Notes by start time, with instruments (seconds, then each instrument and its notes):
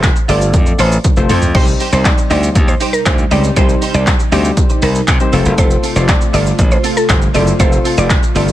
Already playing: synth keys A3 C4 F4 A4 D#5
0.03 kick, clap, closed hi-hat, shaker
0.16 muted clean electric guitar stroke, shaker
0.28 slap bass G1, synth keys A3 C4 F4 A4 D5, clean electric guitar F4 A4 C5, synth pluck D5, open hi-hat, shaker
0.41 muted clean electric guitar stroke, shaker
0.54 slap bass F2, kick, closed hi-hat, shaker
0.66 muted clean electric guitar stroke, shaker
0.79 slap bass A1, clean electric guitar F4 A4 C5, synth pluck C5, open hi-hat, shaker
0.91 muted clean electric guitar stroke, shaker
1.04 muted clean electric guitar stroke, kick, closed hi-hat, high tom, shaker
1.17 slap bass F1, synth keys A3 C4 F4 A4 C5, muted clean electric guitar stroke, shaker
1.29 slap bass F2, clean electric guitar F4 A4 C5, mid tom, open hi-hat, shaker
1.42 muted clean electric guitar stroke, floor tom, shaker
1.54 slap bass C2, analog synth pad C3 G3 D#4, synth keys G3 C4 D#4 G4 C5, clean electric guitar D#4 G4 C5, synth pluck C5, kick, crash
1.67 muted clean electric guitar stroke, shaker
1.80 clean electric guitar D#4 G4 C5, open hi-hat, shaker
1.92 slap bass C2, synth keys G3 C4 D#4 G4 C5, clean electric guitar D#4 G4 C5, synth pluck C5, shaker
2.05 synth pluck D5, kick, clap, closed hi-hat, shaker
2.18 muted clean electric guitar stroke, shaker
2.30 slap bass D2, clean electric guitar D#4 G4 C5, synth pluck D5, open hi-hat, shaker
2.43 muted clean electric guitar stroke, shaker
2.55 slap bass D#2, kick, closed hi-hat, shaker
2.68 synth pluck C5, muted clean electric guitar stroke, shaker
2.80 clean electric guitar D#4 G4 C5, open hi-hat, shaker
2.93 synth pluck A#4, muted clean electric guitar stroke, shaker
3.06 slap bass D2, synth pluck C5, muted clean electric guitar stroke, kick, clap, closed hi-hat, shaker
3.18 muted clean electric guitar stroke, shaker
3.31 slap bass C#2, synth keys G3 C4 D#4 G4 C5, clean electric guitar D#4 G4 C5, synth pluck D5, open hi-hat, shaker
3.44 muted clean electric guitar stroke, shaker
3.56 slap bass C2, synth keys G3 C4 D#4 G4 C5, clean electric guitar D#4 G4 C5, synth pluck C5, kick, closed hi-hat, shaker
3.69 muted clean electric guitar stroke, shaker
3.81 clean electric guitar D#4 G4 C5, open hi-hat, shaker
3.94 slap bass C2, clean electric guitar D#4 G4 C5, synth pluck D5, shaker
4.07 kick, clap, closed hi-hat, shaker
4.19 muted clean electric guitar stroke, shaker
4.32 slap bass D2, synth keys G3 C4 D#4 G4 C5, clean electric guitar D#4 G4 C5, synth pluck D5, open hi-hat, shaker
4.44 muted clean electric guitar stroke, shaker
4.57 kick, closed hi-hat, shaker
4.70 muted clean electric guitar stroke, shaker
4.82 slap bass C2, clean electric guitar D#4 G4 C5, synth pluck A#4, open hi-hat, shaker
4.95 muted clean electric guitar stroke, shaker
5.07 slap bass C3, muted clean electric guitar stroke, kick, clap, closed hi-hat, shaker
5.20 synth keys G3 C4 D#4 G4 C5, muted clean electric guitar stroke, shaker
5.32 slap bass F1, synth keys A3 C4 F4 A4 C5, analog synth pad A3 F4, clean electric guitar C4 F4 A4, open hi-hat, shaker
5.45 slap bass F#1, muted clean electric guitar stroke, shaker
5.58 slap bass F1, clean electric guitar C4 F4 A4, synth pluck C5, kick, closed hi-hat, shaker
5.71 muted clean electric guitar stroke, shaker
5.83 clean electric guitar C4 F4 A4, open hi-hat, shaker
5.96 slap bass F1, synth keys A3 C4 F4 A4 D5, clean electric guitar C4 F4 A4, synth pluck C5, shaker
6.08 synth pluck D5, kick, clap, closed hi-hat, shaker
6.21 muted clean electric guitar stroke, shaker
6.33 slap bass G1, clean electric guitar C4 F4 A4, synth pluck D5, open hi-hat, shaker
6.46 muted clean electric guitar stroke, shaker
6.59 slap bass A1, kick, closed hi-hat, shaker
6.71 synth pluck C5, muted clean electric guitar stroke, shaker
6.84 clean electric guitar C4 F4 A4, open hi-hat, shaker
6.97 synth pluck A4, muted clean electric guitar stroke, shaker
7.09 slap bass G1, synth pluck C5, kick, clap, closed hi-hat, shaker
7.22 muted clean electric guitar stroke, shaker
7.34 slap bass F#1, synth keys A3 C4 F4 A4 C5, clean electric guitar C4 F4 A4, synth pluck D5, open hi-hat, shaker
7.47 muted clean electric guitar stroke, shaker
7.59 slap bass F1, synth keys A3 C4 F4 A4 C5, clean electric guitar C4 F4 A4, synth pluck C5, kick, closed hi-hat, shaker
7.72 muted clean electric guitar stroke, shaker
7.84 clean electric guitar C4 F4 A4, open hi-hat, shaker
7.97 slap bass F1, clean electric guitar C4 F4 A4, synth pluck D5, shaker
8.10 kick, clap, closed hi-hat, shaker
8.22 muted clean electric guitar stroke, shaker
8.35 slap bass G1, synth keys A3 C4 F4 A4 C5, clean electric guitar C4 F4 A4, synth pluck D5, open hi-hat, shaker
8.48 muted clean electric guitar stroke, shaker